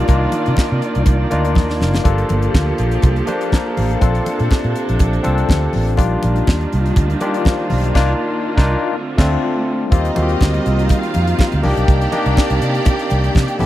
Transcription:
Already playing: string section D#3 F4 D5, tine electric piano A#3 D4 G4
0.08 fingered electric bass C2, tine electric piano A#3 D4 D#4 F4, string section A#3, kick, closed hi-hat, muted conga
0.32 closed hi-hat, muted conga
0.46 fingered electric bass C3, closed hi-hat
0.57 kick, snare, clap, high conga
0.72 fingered electric bass C3
0.82 closed hi-hat
0.95 fingered electric bass C2, closed hi-hat
1.06 fingered electric bass C2, kick, closed hi-hat, muted conga, low conga
1.30 fingered electric bass D2, tine electric piano A#3 D4 D#4 F4, closed hi-hat, muted conga
1.45 closed hi-hat
1.55 fingered electric bass D#2, kick, snare, high conga
1.70 snare
1.80 fingered electric bass F#1, snare, high conga
1.94 snare, high conga
2.04 fingered electric bass G1, string section F3 G4 A4, tine electric piano A#3 D4 F4 A4, kick, closed hi-hat, muted conga
2.18 closed hi-hat
2.29 fingered electric bass G1, closed hi-hat, muted conga
2.42 closed hi-hat
2.54 fingered electric bass D2, kick, snare, clap, high conga
2.78 fingered electric bass A#1, closed hi-hat
2.91 closed hi-hat
3.02 fingered electric bass C2, kick, closed hi-hat, muted conga, low conga
3.16 closed hi-hat
3.27 tine electric piano A#3 D4 F4 C5, closed hi-hat, muted conga
3.41 closed hi-hat
3.52 tine electric piano F5 A#5, kick, snare, clap, high conga
3.77 fingered electric bass A1, tine electric piano C5 F5, open hi-hat, high conga
3.90 closed hi-hat
4.01 fingered electric bass A#1, string section C3 D4, tine electric piano C4 D4 F4 A4, kick, closed hi-hat, muted conga
4.15 closed hi-hat
4.26 closed hi-hat, muted conga
4.39 fingered electric bass A#2, closed hi-hat
4.51 kick, snare, clap, high conga
4.64 fingered electric bass A#2, closed hi-hat
4.76 closed hi-hat
4.89 fingered electric bass A#1, closed hi-hat
4.99 fingered electric bass A#1, kick, closed hi-hat, muted conga
5.13 closed hi-hat
5.23 fingered electric bass C2, tine electric piano C4 D4 F4 A4, closed hi-hat, muted conga
5.38 closed hi-hat
5.49 fingered electric bass D2, kick, snare, clap, high conga
5.73 fingered electric bass A1, open hi-hat, high conga
5.87 closed hi-hat
5.97 fingered electric bass A#1, string section D#3 G3 D4 F4, tine electric piano A#3 D4 F4 G4, kick, closed hi-hat, muted conga
6.23 fingered electric bass A#1, closed hi-hat, muted conga
6.36 closed hi-hat
6.47 fingered electric bass D#2, kick, snare, clap, high conga
6.61 closed hi-hat
6.73 fingered electric bass C2, closed hi-hat
6.86 closed hi-hat
6.96 fingered electric bass D2, kick, closed hi-hat, muted conga, low conga
7.10 closed hi-hat
7.20 tine electric piano A#3 D4 F4 G4, closed hi-hat, muted conga
7.34 closed hi-hat
7.45 tine electric piano C5 F5, kick, snare, clap, high conga
7.70 fingered electric bass B1, tine electric piano F4 A#4, open hi-hat, high conga
7.84 closed hi-hat
7.94 fingered electric bass C2, tine electric piano A#3 D4 D#4 F4, string section A#3, kick, snare, crash
8.57 fingered electric bass C2, tine electric piano A#3 D4 D#4 F4, kick, snare
8.95 string section D3 A3 C4
9.17 fingered electric bass D2, tine electric piano A3 C4 D4 F4, kick, snare, crash
9.91 fingered electric bass D#2, string section D#3 G3 C4 D#4 F4 D#5, tine electric piano A#3 C4 F4 G4, kick, closed hi-hat
10.05 closed hi-hat
10.15 fingered electric bass D#2, tine electric piano A#3 C4 F4 F#4, closed hi-hat, muted conga
10.22 tine electric piano G4
10.29 closed hi-hat
10.41 fingered electric bass D2, kick, snare, clap, high conga
10.54 closed hi-hat
10.66 fingered electric bass C2, closed hi-hat
10.79 closed hi-hat
10.89 string section F4 F5, kick, closed hi-hat, muted conga
11.03 closed hi-hat
11.14 fingered electric bass F2, closed hi-hat, muted conga
11.27 closed hi-hat
11.39 kick, snare, clap, high conga
11.52 fingered electric bass D2, closed hi-hat
11.63 fingered electric bass C2, string section C3 A#3 G4 D5 G5, tine electric piano A#3 D4 D#4 G4, open hi-hat, high conga
11.77 fingered electric bass B1, closed hi-hat
11.88 fingered electric bass C2, kick, closed hi-hat
12.01 closed hi-hat
12.12 tine electric piano A#3 D4 D#4 G4, closed hi-hat, muted conga
12.26 fingered electric bass C2, closed hi-hat
12.37 kick, snare, clap, high conga
12.50 fingered electric bass C2, closed hi-hat
12.62 fingered electric bass C3, closed hi-hat
12.75 closed hi-hat
12.85 kick, closed hi-hat, muted conga, low conga
12.99 closed hi-hat
13.10 fingered electric bass C2, closed hi-hat, muted conga
13.24 closed hi-hat
13.35 fingered electric bass C3, kick, snare, clap, high conga
13.48 closed hi-hat
13.59 fingered electric bass A1, string section C#3 G3 A3 E4 A4 A5, tine electric piano B3 C#4 E4 G4, open hi-hat, high conga

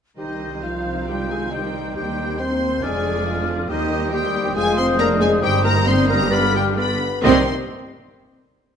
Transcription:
0.18 double bass section C2, cello section C2, french horn section D#3, viola section D#3 G3, violin section C4 D#4 D#5, clarinet D#4, bassoon G4, oboe C5, flute section G6
0.63 french horn section F3, bassoon F4, clarinet F4, violin section F5
1.07 french horn section G3, clarinet G4, oboe C5, violin section G5, flute section G6
1.29 french horn section G#3, clarinet G#4, violin section G#5
1.51 french horn section G3, bassoon D#4, clarinet G4, oboe C5, violin section G5, flute section G6
1.95 cello section D#2, double bass section D#2, french horn section G3, clarinet G4, oboe C5, violin section G5, flute section G6
2.39 french horn section C4, bassoon C4, clarinet C5, oboe C5, violin section C6, flute section G6
2.83 double bass section F1, cello section F2, viola section D3 F3, french horn section G#3, violin section D4 G#4 G#5, bassoon D4, clarinet G#4, oboe D5, flute section F6
3.27 bassoon F4
3.68 double bass section D#2, cello section D#2, french horn section D#3, viola section D#3 G3, violin section C4 G4 D#5, clarinet D#4, bassoon G4, oboe C5, flute section D#6
4.12 french horn section G3, clarinet G4, oboe C5, violin section G5, flute section D#6
4.55 double bass section F1, cello section F2, french horn section G#3, viola section G#3, violin section F4 G#5, bassoon F4, clarinet G#4, oboe C5, flute section D#6
4.77 french horn section C4, clarinet C5, violin section C6
4.98 french horn section A#3, bassoon D4, clarinet A#4, violin section A#5
5.20 french horn section G#3, clarinet G#4, violin section G#5
5.42 double bass section G1, cello section G2, french horn section G3, viola section G3, bassoon C4, violin section D#4 G5, clarinet G4, oboe C5, flute section D#6
5.63 french horn section A#3, clarinet A#4, violin section A#5
5.86 bassoon G3, french horn section C4, oboe C5, clarinet C5, violin section C6, flute section D#6
6.08 french horn section A#3, clarinet A#4, violin section A#5
6.31 viola section D3, french horn section B3, violin section D4 F4 B5, clarinet B4, oboe D5, flute section F6
6.55 french horn section G3, clarinet G4, violin section G5
6.77 bassoon B3, french horn section B3, clarinet B4, oboe D5, violin section B5, flute section F6
7.23 double bass section C2, cello section C3, viola section D#3 C4, bassoon G3, violin section C4 G4 C6, french horn section C4, clarinet C5, oboe D#5, flute section C6

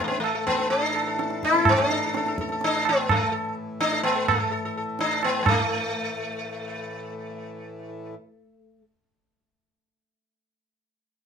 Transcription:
Already playing: harmonium A2 E3
0.00 sitar A3, tabla ke
0.08 sitar B3
0.12 tabla te
0.20 sitar A3, tabla na
0.35 sitar A4
0.47 sitar B3, tabla ke
0.58 sitar A4, tabla te
0.70 sitar D4, tabla tin
0.81 sitar A4
0.94 sitar A4, tabla na
1.07 sitar A4
1.18 sitar A4, tabla te
1.30 tabla te
1.43 sitar E4, tabla ke
1.54 sitar A4, tabla te
1.65 sitar B3, tabla na, tabla ge
1.80 sitar A4
1.90 sitar D4 A4, tabla te
2.06 sitar A4
2.14 sitar A4, tabla te
2.26 sitar A4, tabla te
2.38 sitar A4, tabla ke
2.49 sitar A4, tabla te
2.61 sitar D4, tabla te
2.76 sitar A4
2.85 sitar B3, tabla na
3.09 sitar A3, tabla na, tabla ge
3.21 sitar A4
3.32 sitar A4
3.80 sitar D4, tabla te
3.93 sitar A4
4.03 sitar B3, tabla na
4.16 sitar A4
4.28 sitar A3, tabla na, tabla ge
4.40 sitar A4
4.52 sitar A4
4.65 sitar A4
4.77 sitar A4
4.99 sitar D4, tabla te
5.12 sitar A4
5.23 sitar B3, tabla na
5.43 harmonium E3, sitar B3, tabla na, tabla ge
5.47 harmonium A2, sitar A3

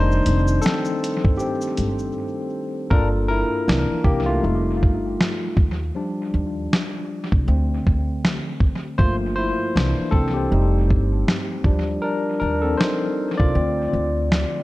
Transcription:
Already playing: upright bass F1, tine electric piano D#3 G3 A3 D4 D#4 C5
0.12 shaker
0.26 upright bass F1, closed hi-hat, shaker
0.48 shaker
0.62 tine electric piano C4 A4, shaker
0.66 snare
0.85 shaker
1.04 closed hi-hat, shaker
1.25 upright bass G1, kick
1.37 tine electric piano C4 G4, shaker
1.61 shaker
1.77 upright bass G1, closed hi-hat, shaker
1.99 shaker
2.90 upright bass G1, tine electric piano A#3 D4 F4 A4 A#4, kick
3.28 tine electric piano E4 A#4
3.67 upright bass C2, tine electric piano E3 A#3 D4, snare
3.90 muted upright bass stroke
4.04 upright bass C2, tine electric piano A#3 G4, kick
4.26 tine electric piano A3 F4
4.43 upright bass F1, tine electric piano G3 A3 D#4
4.83 upright bass G1, kick
5.21 snare
5.57 upright bass D#2, kick
5.95 tine electric piano F3 G3 D4
6.34 upright bass D#2
6.73 snare
7.32 upright bass C2, kick
7.47 upright bass D2, tine electric piano D3 A3 C4
7.87 upright bass D2, kick
8.25 snare
8.60 kick
8.98 upright bass G1, tine electric piano F3 A3 A#3 F4 C5, kick
9.36 tine electric piano E4 C5
9.75 upright bass C2, tine electric piano E3 A#3 D4, snare
9.98 muted upright bass stroke
10.11 upright bass C2, tine electric piano C4 A4, kick
10.33 tine electric piano C4 G4
10.51 upright bass F1, tine electric piano G3 A3 D#4
10.90 upright bass G1, kick
11.28 snare
11.64 upright bass D#2, tine electric piano F3 G3 D4, kick
12.02 tine electric piano D4 A#4
12.40 upright bass D#2, tine electric piano D4 A#4
12.62 tine electric piano C4 A4
12.78 tine electric piano D#4 C5, snare
13.38 upright bass C2, tine electric piano F4 D5, kick
13.55 upright bass D2, tine electric piano D3 A3 C4
13.93 upright bass D2
14.32 snare

